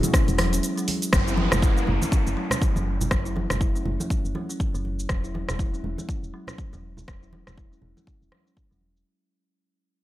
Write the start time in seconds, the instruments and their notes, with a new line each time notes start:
Already playing: analog synth pad E3 B3 F#4 G#4
0.03 kalimba G#3, closed hi-hat, mid tom, high conga, cabasa
0.13 kalimba C#4, kick, cross-stick, closed hi-hat, cabasa
0.28 fm bass E1, closed hi-hat, cabasa
0.38 kalimba F#3, cross-stick, open hi-hat, high conga
0.53 kalimba C#4, closed hi-hat, cabasa
0.63 closed hi-hat, cabasa
0.78 kalimba F#3, closed hi-hat, cabasa
0.88 open hi-hat, high conga
1.02 closed hi-hat, cabasa
1.13 fm bass F#1, kalimba F#3, kick, cross-stick, downlifter, cabasa
1.27 kalimba E4, cabasa
1.37 kalimba F#3, high conga
1.52 fm bass F#1, kalimba A3, cross-stick, high conga, low conga, cabasa
1.62 kalimba E4, kick, cabasa
1.77 kalimba C#4, cabasa
1.87 fm bass F#1, low conga
2.02 kalimba A3, high conga, cabasa
2.12 kalimba C#4, kick, cabasa
2.27 fm bass F#1, cabasa
2.37 kalimba F#3
2.51 kalimba C#4, cross-stick, low conga, cabasa
2.62 kick, cabasa
2.76 fm bass F#1, kalimba F#3, high conga, cabasa
3.01 low conga, cabasa
3.11 fm bass F#1, kalimba F#3, kick, cross-stick, cabasa
3.25 kalimba E4, cabasa
3.36 kalimba F#3, high conga
3.50 fm bass F#1, kalimba A3, cross-stick, high conga, low conga, cabasa
3.61 kalimba E4, kick, cabasa
3.75 kalimba C#4, cabasa
3.85 fm bass F#1, low conga
4.00 kalimba A3, high conga, cabasa
4.10 kalimba C#4, kick, cabasa
4.25 fm bass F#1, cabasa
4.35 kalimba F#3, high conga
4.49 kalimba C#4, cabasa
4.60 kick, cabasa
4.74 fm bass F#1, kalimba F#3, cabasa
4.85 high conga
4.99 cabasa
5.09 fm bass E1, kalimba F#3, kick, cross-stick, cabasa
5.24 kalimba E4, cabasa
5.34 kalimba F#3, high conga
5.49 fm bass E1, kalimba G#3, cross-stick, high conga, low conga, cabasa
5.59 kalimba E4, kick, cabasa
5.73 kalimba C#4, cabasa
5.84 fm bass E1, low conga
5.98 kalimba G#3, high conga, cabasa
6.09 kalimba C#4, kick, cabasa
6.23 fm bass E1, cabasa
6.34 kalimba F#3
6.47 kalimba C#4, cross-stick, low conga, cabasa
6.58 kick, cabasa
6.73 fm bass E1, kalimba F#3, high conga, cabasa
6.97 low conga, cabasa
7.08 fm bass E1, kalimba F#3, kick, cross-stick, cabasa
7.22 kalimba E4, cabasa
7.33 kalimba F#3, high conga
7.47 fm bass E1, kalimba G#3, cross-stick, high conga, low conga, cabasa
7.57 kalimba E4, kick, cabasa
7.72 kalimba C#4, cabasa
7.82 fm bass E1, low conga
7.97 kalimba G#3, high conga, cabasa
8.07 kalimba C#4, kick, cabasa
8.22 fm bass E1, cabasa
8.32 kalimba F#3, cross-stick, high conga
8.46 kalimba C#4, cabasa
8.57 kick, cabasa
8.71 fm bass E1, kalimba F#3, cabasa
8.81 high conga
8.97 cabasa